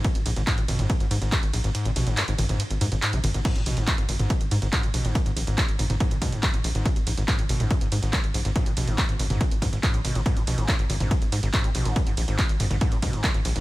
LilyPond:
<<
  \new Staff \with { instrumentName = "Acid bass" } { \clef bass \time 4/4 \key gis \minor \tempo 4 = 141 fis,16 r16 gis,16 gis,16 gis,16 ais,16 b,16 gis,16 fis,16 gis,16 gis,,16 gis,16 fis,16 r16 gis,16 gis,16 | gis,16 ais,16 b,16 gis,16 fis,16 gis,16 gis,,16 gis,16 fis,16 r16 fis,16 gis,16 gis,16 cis16 gis,,16 gis,16 | gis,16 ais,16 b,16 gis,16 fis,16 gis,16 gis,,16 gis,16 fis,16 r16 gis,16 gis,16 gis,16 ais,16 b,16 gis,16 | fis,16 gis,16 gis,,16 gis,16 fis,16 r16 gis,16 gis,16 gis,16 ais,16 b,16 gis,16 fis,16 gis,16 gis,,16 gis,16 |
fis,16 r16 gis,16 gis,16 gis,16 ais,16 b,16 gis,16 fis,16 gis,16 gis,,16 gis,16 fis,16 r16 gis,16 gis,16 | gis,16 ais,16 b,16 gis,16 fis,16 gis,16 gis,,16 gis,16 fis,16 r16 gis,16 gis,16 gis,16 ais,16 b,16 gis,16 | gis,16 ais,16 b,16 gis,16 fis,16 gis,16 gis,,16 gis,16 fis,16 r16 gis,16 gis,16 gis,16 ais,16 b,16 gis,16 | fis,16 gis,16 gis,,16 gis,16 fis,16 r16 gis,16 gis,16 gis,16 ais,16 b,16 gis,16 fis,16 gis,16 gis,,16 gis,16 | }
  \new Staff \with { instrumentName = "Analog synth bass" } { \clef bass \time 4/4 \key gis \minor r16 gis,,16 ais,,16 gis,,16 r16 gis,,16 gis,,16 gis,,16 r16 gis,,16 gis,16 gis,,16 r16 gis,,16 ais,,16 gis,,16 | r16 gis,,16 ais,,16 gis,,16 r16 gis,,16 gis,,16 gis,,16 r16 gis,,16 gis,16 gis,,16 r16 ais,,16 gis,,16 gis,,16 | r16 gis,,16 ais,,16 gis,,16 r16 gis,,16 gis,,16 gis,,16 r16 gis,,16 gis,16 gis,,16 r16 gis,,16 ais,,16 gis,,16 | r16 gis,,16 ais,,16 gis,,16 r16 gis,,16 gis,,16 gis,,16 r16 gis,,16 gis,16 gis,,16 r16 gis,,16 ais,,16 gis,,16 |
r16 gis,,16 ais,,16 gis,,16 r16 gis,,16 gis,,16 gis,,16 r16 gis,,16 gis,16 gis,,16 r16 gis,,16 ais,,16 gis,,16 | r16 gis,,16 ais,,16 gis,,16 r16 gis,,16 gis,,16 gis,,16 r16 gis,,16 gis,16 gis,,16 r16 ais,,16 gis,,16 gis,,16 | r16 gis,,16 ais,,16 gis,,16 r16 gis,,16 gis,,16 gis,,16 r16 gis,,16 gis,16 gis,,16 r16 gis,,16 ais,,16 gis,,16 | r16 gis,,16 ais,,16 gis,,16 r16 gis,,16 gis,,16 gis,,16 r16 gis,,16 gis,16 gis,,16 r16 gis,,16 ais,,16 gis,,16 | }
  \new DrumStaff \with { instrumentName = "Drums" } \drummode { \time 4/4 <hh bd cymr>16 hh16 <hho cymr>16 hh16 <hc hh bd cymr>16 hh16 <hho cymr toml>16 <hh toml>16 <hh bd cymr>16 hh16 <hho cymr>16 hh16 <hc hh bd cymr>16 hh16 <hho cymr>16 hh16 | <hh cymr>16 hh16 <hho cymr>16 hh16 <hc hh cymr>16 hh16 <hho cymr toml>16 <hh toml>16 <hh cymr>16 hh16 <hho cymr>16 hh16 <hc hh cymr>16 hh16 <hho cymr toml>16 hh16 | <cymc hh bd cymr>16 hh16 <hho cymr>16 hh16 <hc hh bd cymr>16 hh16 <hho cymr toml>16 <hh toml>16 <hh bd cymr>16 hh16 <hho cymr>16 hh16 <hc hh bd cymr>16 hh16 <hho cymr>16 hh16 | <hh bd cymr>16 hh16 <hho cymr>16 hh16 <hc hh bd cymr>16 hh16 <hho cymr toml>16 <hh toml>16 <hh bd cymr>16 hh16 <hho bd cymr>16 hh16 <hc hh bd cymr>16 hh16 <hho cymr>16 hh16 |
<hh bd cymr>16 hh16 <hho cymr>16 hh16 <hc hh bd cymr>16 hh16 <hho cymr toml>16 <hh toml>16 <hh bd cymr>16 hh16 <hho cymr>16 hh16 <hc hh bd cymr>16 hh16 <hho cymr>16 hh16 | <hh bd cymr>16 hh16 <hho cymr>16 hh16 <hc hh bd cymr>16 hh16 <hho cymr toml>16 <hh toml>16 <hh bd cymr>16 hh16 <hho bd cymr>16 hh16 <hc hh bd cymr>16 hh16 <hho cymr>16 hh16 | <hh bd cymr>16 hh16 <hho cymr>16 hh16 <hc hh bd cymr>16 hh16 <hho cymr toml>16 <hh toml>16 <hh bd cymr>16 hh16 <hho cymr>16 hh16 <hc hh bd cymr>16 hh16 <hho cymr>16 hh16 | <hh bd cymr>16 hh16 <hho cymr>16 hh16 <hc hh bd cymr>16 hh16 <hho cymr toml>16 <hh toml>16 <hh bd cymr>16 hh16 <hho bd cymr>16 hh16 <hc hh bd cymr>16 hh16 <hho cymr>16 hh16 | }
>>